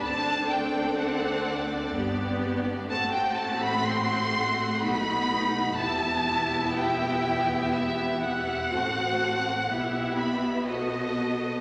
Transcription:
Already playing: D4
0.01 D2 C4 A4 D5 A5
0.50 G5
0.99 F#5
1.94 G1 G2 B3 G4
2.89 A1 A2 A3 C4 F#4 F#5 A5
3.13 G5
3.36 A5
3.62 B5
3.87 C6
4.82 B1 B2 D#4 B5
5.77 E1 E2 B3 E4 G4 E5 A5
6.77 G5
7.74 E5
8.22 F#5
8.70 A1 A2 C4 F#4 A4 C5
9.68 B1 B2 B3 E4 G4 E5
10.17 B5
10.67 F#4 A4 C5 D#5

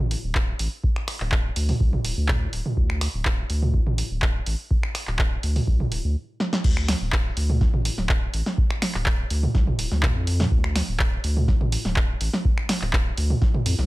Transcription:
0.00 A1
0.11 open hi-hat
0.24 D1
0.35 kick, clap
0.59 A1, open hi-hat
0.84 kick
0.96 finger snap
1.08 finger snap, open hi-hat
1.20 D1, clap
1.32 kick, clap
1.56 D2, open hi-hat
1.69 mid tom, open hi-hat
1.80 C2, kick
1.93 mid tom
2.05 D1, open hi-hat
2.17 D2
2.28 kick, clap, mid tom
2.53 D1, open hi-hat
2.66 mid tom
2.77 D2, kick
2.90 finger snap
3.01 finger snap, open hi-hat
3.14 D1
3.25 kick, clap
3.50 D2, open hi-hat
3.62 mid tom
3.74 kick
3.87 A1, mid tom
3.98 open hi-hat
4.11 D1
4.22 kick, clap
4.46 A1, open hi-hat
4.71 kick
4.83 finger snap
4.95 finger snap, open hi-hat
5.07 D1, clap
5.19 kick, clap
5.43 D2, open hi-hat
5.56 mid tom, open hi-hat
5.67 C2, kick
5.80 mid tom
5.92 D1, open hi-hat
6.04 D2
6.40 snare
6.53 snare
6.64 D2, kick, crash
6.77 finger snap
6.88 finger snap, snare, open hi-hat
7.01 D1
7.12 kick, clap
7.37 D2, open hi-hat
7.50 mid tom
7.61 kick, snare
7.74 A1, mid tom
7.85 open hi-hat
7.98 D1, snare
8.09 kick, clap
8.34 A1, open hi-hat
8.46 snare
8.58 kick
8.70 finger snap
8.82 finger snap, snare, open hi-hat
8.94 D1, clap
9.06 kick, clap
9.30 D2, open hi-hat
9.43 mid tom
9.55 C2, kick, snare
9.67 mid tom
9.79 D1, open hi-hat
9.91 D2, snare
10.03 kick, clap, mid tom
10.16 F2
10.27 open hi-hat
10.40 snare, mid tom
10.51 D2, kick
10.64 finger snap
10.76 finger snap, snare, open hi-hat
10.88 D1
10.99 kick, clap
11.24 D2, open hi-hat
11.37 mid tom
11.48 kick, snare
11.61 A1, mid tom
11.72 open hi-hat
11.85 D1, snare
11.96 kick, clap
12.21 A1, open hi-hat
12.33 snare
12.45 kick
12.58 finger snap
12.69 finger snap, snare, open hi-hat
12.82 D1, clap
12.93 kick, clap
13.17 D2, open hi-hat
13.30 mid tom
13.42 kick, snare
13.54 mid tom
13.66 F2, open hi-hat
13.78 C2, snare

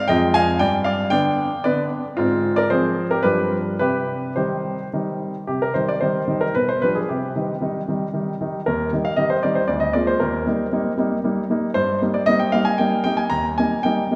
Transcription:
0.08 F2 G#3 C4 F4 D#5 G5
0.34 F5 G#5
0.59 G2 D5 G5
0.84 D5 F5
1.10 D3 B3 D4 D5 G5
1.64 D3 B3 D4 B4 D5
2.17 G#2 C4 F4
2.56 A#4 D5
2.70 F3 C4 G#4 C5
3.11 G4 A#4
3.23 G2 F3 G3 D4 G4 B4
3.79 C3 G4 B4
4.36 D#3 G3 D#4 G4 C5
4.93 D#3 G3 D#4
5.47 C3 G4
5.62 A#4
5.74 D#3 G3 D#4 C5
5.89 D5
6.01 D#3 G3 D#4 C5
6.28 D#3 G3 D#4
6.41 A#4
6.55 B2 B4
6.69 C5
6.82 F3 G3 D4 B4
6.95 G#4
7.09 C3 G4
7.36 D#3 G3 D#4
7.61 D#3 G3 D#4
7.88 D#3 G3 D#4
8.14 D#3 G3 D#4
8.41 D#3 G3 D#4
8.66 D#2 A#4
8.93 D#3 G3 D#4
9.05 F5
9.16 D#3 G3 D#4 D#5
9.30 C5
9.43 D#3 G3 D#4 D5
9.55 C5
9.68 D2 D5
9.80 D#5
9.93 G#3 A#3 F4 D5
10.07 C5
10.20 D#2 A#4
10.47 G3 A#3 D#4
10.73 G3 A#3 D#4
10.98 G3 A#3 D#4
11.24 G3 A#3 D#4
11.50 G3 A#3 D#4
11.74 G2 C5
12.02 G3 A#3 D#4
12.14 D5
12.26 G3 A#3 D#4 D#5
12.39 G5
12.52 G3 A#3 D#4 F5
12.65 G#5
12.78 G3 A#3 D#4 G5
13.04 G3 A#3 D#4 G5
13.17 G#5
13.30 D#2 A#5
13.58 G3 A#3 D#4 G#5
13.83 G3 A#3 D#4 G5
14.11 G3 A#3 D#4

